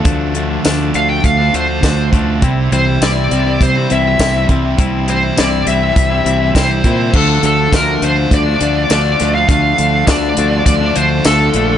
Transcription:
<<
  \new Staff \with { instrumentName = "Lead electric guitar" } { \time 4/4 \key d \minor \tempo 4 = 102 r4. f''16 g''16 f''8 c''4 r8 | r8 c''8 d''4 c''8 e''4 r8 | r8 c''8 d''8 e''4. c''4 | a'8 a'8 bes'8 c''8 d''4 d''8. f''16 |
f''4 d''4 d''8 c''8 a'4 | }
  \new Staff \with { instrumentName = "Clean electric guitar" } { \time 4/4 \key d \minor <d f a d'>8 <d f a d'>16 <f a d'>16 <d f a d'>8 <d f a d'>16 <f a d'>8 <f a d'>16 <d f a d'>16 <f a d'>16 <d f a d'>16 <f a d'>16 <d f a d'>8 | <c g c' e'>8 <c g c' e'>16 <g c' e'>16 <c g c' e'>8 <c g c' e'>16 <g c' e'>8 <g c' e'>16 <c g c' e'>16 <g c' e'>16 <c g c' e'>16 <g c' e'>16 <c g c' e'>8 | <c g c' e'>8 <c g c' e'>16 <g c' e'>16 <c g c' e'>8 <c g c' e'>16 <g c' e'>8 <g c' e'>16 <c g c' e'>16 <g c' e'>16 <c g c' e'>16 <g c' e'>16 <c g c' e'>8 | <d f a d'>8 <d f a d'>16 <f a d'>16 <d f a d'>8 <d f a d'>16 <f a d'>8 <f a d'>16 <d f a d'>8 <d f a d'>16 <f a d'>16 <d f a d'>16 <f a d'>16 |
<d f a d'>8 <d f a d'>16 <f a d'>16 <d f a d'>8 <d f a d'>16 <f a d'>8 <f a d'>16 <d f a d'>8 <d f a d'>16 <f a d'>16 <d f a d'>16 <f a d'>16 | }
  \new Staff \with { instrumentName = "Distorted electric guitar" } { \time 4/4 \key d \minor <d a f'>8 a8 a8 d'8 a8 d8 a8 f'8 | c8 e8 g8 c'8 g8 e8 g8 e'8 | c8 e8 g8 c'8 g8 e8 g8 e'8 | d8 d8 a8 f'8 d'8 d8 d'8 a8 |
d8 d8 a8 f'8 d'8 d8 d'8 a8 | }
  \new Staff \with { instrumentName = "Fingered electric bass" } { \clef bass \time 4/4 \key d \minor d,4 d,8 d,8 d,8 d,8 d,8 d,8 | c,8 c,8 c,8 c,8 c8 c,8 c,8 c,8 | c,4 c,8 c,8 c,8 c,8 c,8 bes,8 | d,8 d,8 d,8 d,8 d,8 d,8 d,8 d,8 |
d,8 d,8 d,8 d,8 d,8 d,8 d,8 bes,,8 | }
  \new DrumStaff \with { instrumentName = "Drums" } \drummode { \time 4/4 <hh bd>8 hh8 <hh sn tamb>8 hh8 <hh bd>8 hh8 <hh bd sn tamb>8 <hh bd>8 | <hh bd>8 hh8 <hh sn tamb>8 hh8 <hh bd>8 hh8 <hh bd sn tamb>8 <hh bd>8 | <hh bd>8 hh8 <hh sn tamb>8 hh8 <hh bd>8 hh8 <hh bd sn tamb>8 <hh bd>8 | <cymc bd>8 hh8 <hh bd sn tamb>8 hh8 <hh bd>8 hh8 <hh sn tamb>8 <hh sn>8 |
<hh bd>8 hh8 <hh bd sn tamb>8 hh8 <hh bd>8 hh8 <hh sn tamb>8 hh8 | }
>>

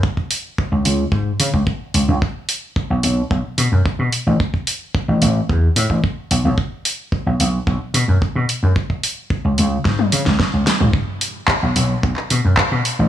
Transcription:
<<
  \new Staff \with { instrumentName = "Slap bass" } { \clef bass \time 4/4 \key cis \dorian \tempo 4 = 110 r4 r16 cis,16 cis,16 r16 gis,16 r16 cis16 cis,16 r8 cis,16 cis,16 | r4 r16 b,,16 b,,16 r16 b,,16 r16 b,16 fis,16 r16 b,16 r16 a,,16 | r4 r16 a,,16 a,,16 r16 e,16 r16 a,16 a,,16 r8 b,,16 b,,16 | r4 r16 b,,16 b,,16 r16 b,,16 r16 b,16 fis,16 r16 b,16 r16 fis,16 |
r4 r16 cis,16 cis,16 r16 gis,16 r16 cis16 cis,16 r16 cis,16 r16 cis,16 | r4 r16 b,,16 b,,16 r16 b,,16 r16 b,16 fis,16 r16 b,16 r16 a,,16 | }
  \new DrumStaff \with { instrumentName = "Drums" } \drummode { \time 4/4 bd16 bd16 hho8 bd8 hho8 bd8 hho16 bd16 bd8 hho8 | bd8 hho8 bd8 hho8 bd8 hho8 bd8 hho8 | bd16 bd16 hho8 bd8 hho8 bd8 hho16 bd16 bd8 hho8 | bd8 hho8 bd8 hho8 bd8 hho8 bd8 hho8 |
bd16 bd16 hho8 bd8 hho8 <bd sn>16 tommh16 hho16 <bd sn>16 <bd sn>8 <hho sn>16 toml16 | bd8 hho8 <hc bd>8 hho8 bd16 hc16 hho8 <hc bd>8 hho8 | }
>>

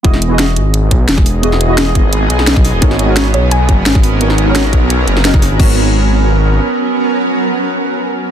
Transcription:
<<
  \new Staff \with { instrumentName = "Synth pluck" } { \time 4/4 \key gis \minor \tempo 4 = 173 r1 | r1 | r4. cis''8 gis''2~ | gis''2. r4 |
r1 | r1 | }
  \new Staff \with { instrumentName = "Synth stab" } { \time 4/4 \key gis \minor <b e' fis' gis' dis''>8. <b e' fis' gis' dis''>2.~ <b e' fis' gis' dis''>16 | <b e' fis' gis' dis''>8. <b e' fis' gis' dis''>2.~ <b e' fis' gis' dis''>16 | <b dis' fis' ais' cis''>8. <b dis' fis' ais' cis''>2.~ <b dis' fis' ais' cis''>16 | <b dis' fis' ais' cis''>8. <b dis' fis' ais' cis''>2~ <b dis' fis' ais' cis''>16 <b dis' fis' ais' dis''>4 |
<b dis' fis' ais' cis''>1~ | <b dis' fis' ais' cis''>1 | }
  \new Staff \with { instrumentName = "Ambient pad" } { \time 4/4 \key gis \minor << { <e gis' dis''>1~ | <e gis' dis''>1 | <fis cis' ais'>1~ | <fis cis' ais'>1 |
<fis b cis' ais'>1~ | <fis b cis' ais'>1 | } \\ { b1~ | b1~ | b1~ | b1 |
r1 | r1 | } >> }
  \new Staff \with { instrumentName = "Detuned saw bass" } { \clef bass \time 4/4 \key gis \minor e,,4. gis,,4 b,,8 e,,4~ | e,,4. gis,,4 b,,4~ b,,16 e,,16 | gis,,4. b,,4 fis,,8 gis,,4~ | gis,,4. b,,4 fis,,4~ fis,,16 gis,,16 |
gis,,2. r4 | r1 | }
  \new DrumStaff \with { instrumentName = "Drums" } \drummode { \time 4/4 <hh bd>16 sn16 hh8 <hh sn>8 hh8 hh8 <hh bd>8 <hh sn>16 <bd sn>16 hho8 | hh16 sn16 hh8 <hh sn>8 <hh bd>8 hh8 hh16 sn16 <hh sn>16 <bd sn>16 <hho sn>8 | <hh bd>16 sn16 hh8 <hh sn>8 hh8 hh8 <hh bd>8 <hh sn>16 <bd sn>16 hho8 | hh16 sn16 hh8 <hh sn>8 <hh bd>8 hh8 hh16 sn16 <hh sn>16 <bd sn>16 <hho sn>8 |
<cymc bd>4 r4 r4 r4 | r4 r4 r4 r4 | }
>>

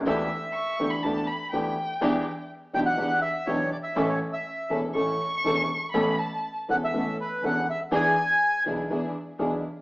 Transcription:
<<
  \new Staff \with { instrumentName = "Violin" } { \time 4/4 \key a \mixolydian \tempo 4 = 122 r4 cis'''8. b''16 a''8 b''8 g''4~ | g''4 r2. | r2 cis'''2 | b''8 a''8. r2 r8. |
r1 | }
  \new Staff \with { instrumentName = "Bandoneon" } { \time 4/4 \key a \mixolydian e''4. r2 r8 | r4. g''16 fis''8. e''8 cis''8 d''16 e''16~ | e''16 cis''8 e''4 r2 r16 | r4. fis''16 e''8. b'8 fis''8 e''8 |
gis''4. r2 r8 | }
  \new Staff \with { instrumentName = "String section" } { \time 4/4 \key a \mixolydian <b e' g'>8 r4 <b e' g'>8 <b e' g'>8 r8 <b e' g'>8 r8 | <d' e' g'>8 r4 <d' e' g'>8 <d' e' g'>8 r8 <d' e' g'>8 r8 | <cis' e' a'>8 r4 <cis' e' a'>8 <cis' e' a'>8 r8 <cis' e' a'>8 r8 | <b cis' a'>8 r4 <b cis' a'>8 <b cis' a'>8 r8 <b cis' a'>8 r8 |
<d' e' gis'>8 r4 <d' e' gis'>8 <d' e' gis'>8 r8 <d' e' gis'>8 r8 | }
  \new Staff \with { instrumentName = "Upright piano" } { \time 4/4 \key a \mixolydian <d, d e b d' g'>8 r4 <d, d e b d' g'>8 <d, d e b d' g'>8 r8 <d, d e b d' g'>8 r8 | <e, e b d' g'>8 r4 <b,, b, e b d' g'>8 <e, e b d' g'>8 r8 <b,, b, e b d' g'>8 r8 | <a,, a, e a cis' a'>8 r4 <e,, e, e a cis' a'>8 <a,, a, e a cis' a'>8 r8 <e,, e, e a cis' a'>8 r8 | <a,, a, e b cis' a'>8 r4 <e,, e, e b cis' a'>8 <a,, a, e b cis' a'>8 r8 <e,, e, e b cis' a'>8 r8 |
<e, e b d' gis'>8 r4 <b,, b, e b d' gis'>8 <e, e b d' gis'>8 r8 <b,, b, e b d' gis'>8 r8 | }
  \new Staff \with { instrumentName = "Upright bass" } { \clef bass \time 4/4 \key a \mixolydian d,8 r4 d,8 d,8 r8 d,8 r8 | e,8 r4 b,,8 e,8 r8 b,,8 r8 | a,,8 r4 e,,8 a,,8 r8 e,,8 r8 | a,,8 r4 e,,8 a,,8 r8 e,,8 r8 |
e,8 r4 b,,8 e,8 r8 b,,8 r8 | }
>>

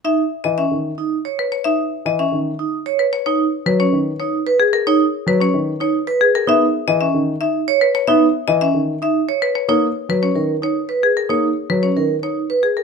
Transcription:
<<
  \new Staff \with { instrumentName = "Marimba" } { \time 3/4 \key cis \dorian \tempo 4 = 112 e''16 r8 dis''16 e''16 r4 r16 b'16 cis''16 | e''16 r8 dis''16 e''16 r4 r16 b'16 cis''16 | cis''16 r8 b'16 cis''16 r8 cis''16 r8 gis'16 ais'16 | cis''16 r8 b'16 cis''16 r8 cis''16 r8 gis'16 ais'16 |
e''16 r8 dis''16 e''16 r8 e''16 r8 b'16 cis''16 | e''16 r8 dis''16 e''16 r8 e''16 r8 b'16 cis''16 | cis''16 r8 b'16 cis''16 r8 cis''16 r8 gis'16 ais'16 | cis''16 r8 b'16 cis''16 r8 cis''16 r8 gis'16 ais'16 | }
  \new Staff \with { instrumentName = "Vibraphone" } { \time 3/4 \key cis \dorian dis'16 r8. cis'16 r8 dis'16 r16 cis''16 r8 | dis'16 r8. cis'16 r8 dis'16 r16 cis''16 r8 | dis'16 r8. cis'16 r8 dis'16 r16 b'16 r8 | dis'16 r8. cis'16 r8 dis'16 r16 b'16 r8 |
dis'16 r8. cis'16 r8 dis'16 r16 cis''16 r8 | dis'16 r8. cis'16 r8 dis'16 r16 cis''16 r8 | dis'16 r8. cis'16 ais'16 r16 dis'16 r16 b'16 r8 | dis'16 r8. cis'16 ais'16 r16 dis'16 r16 b'16 r8 | }
  \new Staff \with { instrumentName = "Grand piano" } { \clef bass \time 3/4 \key cis \dorian r8. e16 r16 dis16 r4. | r8. e16 r16 dis16 r4. | r8. fis16 r16 dis16 r4. | r8. fis16 r16 dis16 r4. |
b16 r8 e16 r16 dis16 r4. | b16 r8 e16 r16 dis16 r4. | ais16 r8 fis16 r16 dis16 r4. | ais16 r8 fis16 r16 dis16 r4. | }
>>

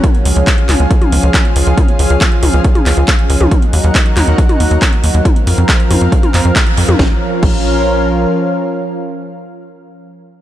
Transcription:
<<
  \new Staff \with { instrumentName = "Analog synth pad" } { \time 4/4 \key bes \minor \tempo 4 = 138 <f des' aes' f''>1~ | <f des' aes' f''>1 | <ges ees' bes' ges''>1 | <f c' bes' f''>1 |
<f des' bes' f''>1~ | <f des' bes' f''>1 | }
  \new Staff \with { instrumentName = "Analog synth bass" } { \clef bass \time 4/4 \key bes \minor r8 des,16 des,16 r8 des,16 des,16 r8 des,16 des,16 r8 des,16 des,16 | r8 des,16 des,16 r8 des,16 des,16 r8 des,16 des,16 r8 des,16 des,16 | r8 ees,16 ees,16 r8 ees,16 ees,16 r8 ees,16 ees,16 r8 ees,16 ees,16 | r8 f,16 f,16 r8 f,16 f,16 r8 f,16 f,16 r8 f,16 f,16 |
bes,,16 r8. bes,,2 r4 | r1 | }
  \new DrumStaff \with { instrumentName = "Drums" } \drummode { \time 4/4 <hh bd toml>16 hh16 hho16 hh16 <hc hh bd>16 hh16 <hc hho toml>16 hh16 <hh bd>16 <hh toml>16 hho16 hh16 <hc hh bd toml>16 hh16 hho16 hh16 | <hh bd toml>16 hh16 hho16 hh16 <hc hh bd>16 hh16 <hho toml>16 hh16 <hh bd>16 <hh toml>16 <hc hho>16 hh16 <hc hh bd>16 hh16 hho16 toml16 | <hh bd toml>16 hh16 hho16 hh16 <hc hh bd>16 hh16 <hc hho toml>16 hh16 <hh bd>16 <hh toml>16 hho16 hh16 <hc hh bd toml>16 hh16 hho16 hh16 | <hh bd toml>16 hh16 hho16 hh16 <hc hh bd>16 hh16 <hho toml>16 hh16 <hh bd>16 <hh toml>16 <hc hho>16 hh16 <hc hh bd>16 hh16 hho16 <hh toml>16 |
<bd sn>4 <cymc bd>4 r4 r4 | r4 r4 r4 r4 | }
>>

